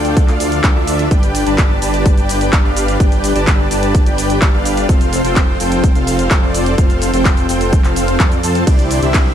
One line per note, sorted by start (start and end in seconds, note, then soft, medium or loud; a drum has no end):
0.00 0.26 D2 loud
0.00 0.26 D4 medium
0.00 0.26 F4 medium
0.00 0.26 A4 medium
0.00 0.26 D5 medium
0.00 0.26 G5 loud
0.05 closed hi-hat soft
0.05 cabasa soft
0.17 kick loud
0.17 closed hi-hat medium
0.17 cabasa soft
0.28 0.62 D2 medium
0.28 0.62 D4 medium
0.28 0.61 F4 medium
0.28 0.61 A4 medium
0.28 0.61 D5 medium
0.28 0.61 F5 medium
0.28 clap soft
0.28 closed hi-hat soft
0.28 cabasa soft
0.40 open hi-hat loud
0.40 cabasa medium
0.52 closed hi-hat medium
0.52 cabasa soft
0.64 0.73 A4 medium
0.64 0.73 G5 medium
0.64 kick loud
0.64 clap loud
0.64 closed hi-hat medium
0.64 cabasa soft
0.76 1.09 D2 loud
0.76 1.08 D4 medium
0.76 1.08 F4 medium
0.76 1.08 A4 medium
0.76 1.08 D5 medium
0.76 1.08 E5 loud
0.87 open hi-hat loud
0.87 cabasa medium
0.99 closed hi-hat medium
0.99 cabasa soft
1.11 1.44 G1 loud
1.11 1.44 D4 medium
1.11 1.44 G4 medium
1.11 1.44 B4 medium
1.11 1.44 D5 medium
1.11 1.44 G5 loud
1.11 kick loud
1.11 closed hi-hat medium
1.11 cabasa soft
1.23 closed hi-hat soft
1.23 cabasa soft
1.35 open hi-hat loud
1.35 cabasa medium
1.46 1.80 G1 loud
1.46 1.79 D4 loud
1.46 1.79 G4 loud
1.46 1.79 B4 loud
1.46 1.79 D5 loud
1.46 1.79 A5 loud
1.46 closed hi-hat soft
1.46 cabasa soft
1.58 kick loud
1.58 clap loud
1.58 closed hi-hat medium
1.58 cabasa soft
1.82 2.15 G1 medium
1.82 2.15 D4 medium
1.82 2.15 G4 medium
1.82 2.15 B4 medium
1.82 2.15 D5 medium
1.82 2.15 A5 loud
1.82 open hi-hat loud
1.82 cabasa medium
1.94 closed hi-hat medium
1.94 cabasa soft
2.06 kick loud
2.06 closed hi-hat medium
2.06 cabasa soft
2.17 2.50 G1 loud
2.17 2.50 D4 medium
2.17 2.50 G4 medium
2.17 2.50 B4 medium
2.17 2.50 D5 medium
2.17 2.50 G5 medium
2.17 closed hi-hat soft
2.17 cabasa soft
2.29 open hi-hat loud
2.29 cabasa medium
2.41 closed hi-hat medium
2.41 cabasa soft
2.53 2.62 G1 loud
2.53 2.62 D4 medium
2.53 2.62 G4 medium
2.53 2.62 D5 medium
2.53 2.62 A5 medium
2.53 kick loud
2.53 clap loud
2.53 closed hi-hat medium
2.53 cabasa soft
2.65 2.98 G1 loud
2.65 2.97 D4 loud
2.65 2.97 G4 medium
2.65 2.97 B4 medium
2.65 2.97 D5 medium
2.65 2.97 F5 loud
2.77 open hi-hat loud
2.77 cabasa medium
2.88 closed hi-hat soft
2.88 cabasa soft
3.00 3.33 D4 medium
3.00 3.33 D5 medium
3.00 kick loud
3.00 closed hi-hat medium
3.00 cabasa soft
3.12 closed hi-hat soft
3.12 cabasa soft
3.24 open hi-hat loud
3.24 cabasa medium
3.35 3.69 G1 loud
3.35 3.68 D4 loud
3.35 3.68 G4 loud
3.35 3.68 B4 loud
3.35 3.68 D5 loud
3.35 3.68 A5 loud
3.35 closed hi-hat medium
3.35 cabasa soft
3.47 kick loud
3.47 clap loud
3.47 closed hi-hat medium
3.47 cabasa soft
3.71 4.04 G1 loud
3.71 4.04 D4 medium
3.71 4.04 G4 medium
3.71 4.04 B4 medium
3.71 4.04 D5 medium
3.71 4.04 A5 loud
3.71 open hi-hat loud
3.71 cabasa medium
3.83 closed hi-hat medium
3.83 cabasa soft
3.95 kick loud
3.95 closed hi-hat medium
3.95 cabasa soft
4.06 4.40 G1 loud
4.06 4.39 D4 medium
4.06 4.39 G4 medium
4.06 4.39 B4 medium
4.06 4.39 D5 medium
4.06 4.39 G5 medium
4.06 closed hi-hat soft
4.06 cabasa soft
4.18 open hi-hat loud
4.18 cabasa medium
4.30 closed hi-hat medium
4.30 cabasa soft
4.42 4.51 D4 medium
4.42 4.51 G4 medium
4.42 4.51 B4 medium
4.42 4.51 D5 medium
4.42 4.51 A5 medium
4.42 kick loud
4.42 clap loud
4.42 closed hi-hat medium
4.42 cabasa soft
4.54 4.87 G1 loud
4.54 4.86 D4 medium
4.54 4.86 G4 medium
4.54 4.86 B4 medium
4.54 4.86 D5 medium
4.54 4.86 F5 loud
4.65 open hi-hat loud
4.65 cabasa medium
4.77 closed hi-hat medium
4.77 cabasa soft
4.89 5.22 C4 medium
4.89 5.22 F4 medium
4.89 5.22 A4 medium
4.89 5.22 C5 medium
4.89 kick loud
4.89 closed hi-hat medium
4.89 cabasa soft
5.01 closed hi-hat soft
5.01 cabasa soft
5.13 open hi-hat loud
5.13 cabasa medium
5.24 5.58 F1 loud
5.24 5.57 C4 loud
5.24 5.57 F4 loud
5.24 5.57 A4 loud
5.24 5.57 C5 loud
5.24 5.57 G5 loud
5.24 closed hi-hat medium
5.24 cabasa soft
5.36 kick loud
5.36 clap loud
5.36 closed hi-hat medium
5.36 cabasa soft
5.60 5.93 F1 medium
5.60 5.93 C4 medium
5.60 5.93 F4 medium
5.60 5.93 A4 medium
5.60 5.93 C5 medium
5.60 5.93 G5 loud
5.60 open hi-hat loud
5.60 cabasa medium
5.72 closed hi-hat medium
5.72 cabasa soft
5.84 kick loud
5.84 closed hi-hat medium
5.84 cabasa soft
5.95 6.28 F1 loud
5.95 6.28 C4 medium
5.95 6.28 F4 medium
5.95 6.28 A4 medium
5.95 6.28 C5 medium
5.95 6.28 F5 medium
5.95 closed hi-hat soft
5.95 cabasa soft
6.07 open hi-hat loud
6.07 cabasa medium
6.19 closed hi-hat medium
6.19 cabasa soft
6.31 kick loud
6.31 clap loud
6.31 closed hi-hat medium
6.31 cabasa soft
6.43 6.76 F1 loud
6.43 6.75 C4 medium
6.43 6.75 F4 medium
6.43 6.75 A4 medium
6.43 6.75 C5 medium
6.43 6.75 D5 loud
6.54 open hi-hat loud
6.54 cabasa medium
6.66 closed hi-hat medium
6.66 cabasa soft
6.78 7.11 C4 medium
6.78 7.11 F4 medium
6.78 7.11 A4 medium
6.78 7.11 C5 medium
6.78 7.11 F5 loud
6.78 kick loud
6.78 closed hi-hat medium
6.78 cabasa soft
6.90 closed hi-hat soft
6.90 cabasa soft
7.02 open hi-hat loud
7.02 cabasa medium
7.14 7.47 F1 loud
7.14 7.46 C4 loud
7.14 7.46 F4 loud
7.14 7.46 A4 medium
7.14 7.46 C5 loud
7.14 7.46 G5 loud
7.14 closed hi-hat medium
7.14 cabasa soft
7.25 kick loud
7.25 clap loud
7.25 closed hi-hat medium
7.25 cabasa soft
7.37 closed hi-hat soft
7.37 cabasa soft
7.49 7.82 F1 medium
7.49 7.82 C4 medium
7.49 7.82 F4 medium
7.49 7.82 A4 medium
7.49 7.82 C5 medium
7.49 7.82 G5 loud
7.49 open hi-hat loud
7.49 cabasa medium
7.61 closed hi-hat medium
7.61 cabasa soft
7.73 kick loud
7.73 closed hi-hat medium
7.73 cabasa soft
7.84 8.18 F1 medium
7.84 8.18 C4 medium
7.84 8.18 F4 medium
7.84 8.18 A4 medium
7.84 8.18 C5 medium
7.84 8.18 F5 medium
7.84 clap soft
7.84 closed hi-hat soft
7.84 cabasa soft
7.96 open hi-hat loud
7.96 cabasa medium
8.08 closed hi-hat medium
8.08 cabasa soft
8.20 8.41 F2 medium
8.20 8.41 F4 medium
8.20 8.41 A4 medium
8.20 8.41 C5 medium
8.20 8.41 D5 medium
8.20 kick loud
8.20 clap loud
8.20 closed hi-hat medium
8.20 cabasa soft
8.32 closed hi-hat soft
8.32 cabasa soft
8.43 8.65 F2 loud
8.43 8.64 C4 medium
8.43 8.64 F4 medium
8.43 8.64 A4 medium
8.43 8.64 C5 medium
8.43 8.64 A5 loud
8.43 open hi-hat loud
8.43 cabasa medium
8.55 closed hi-hat medium
8.55 cabasa soft
8.67 9.00 C2 loud
8.67 9.00 D4 medium
8.67 9.00 E4 medium
8.67 9.00 G4 medium
8.67 9.00 D5 loud
8.67 kick loud
8.67 closed hi-hat medium
8.67 ride medium
8.67 cabasa soft
8.79 closed hi-hat soft
8.79 cabasa soft
8.91 open hi-hat loud
8.91 cabasa medium
9.03 9.34 C2 loud
9.03 9.34 D4 loud
9.03 9.34 E4 medium
9.03 9.34 G4 loud
9.03 9.34 C5 medium
9.03 9.34 E5 loud
9.03 closed hi-hat medium
9.03 cabasa soft
9.14 kick loud
9.14 clap loud
9.14 closed hi-hat medium
9.14 ride medium
9.14 cabasa soft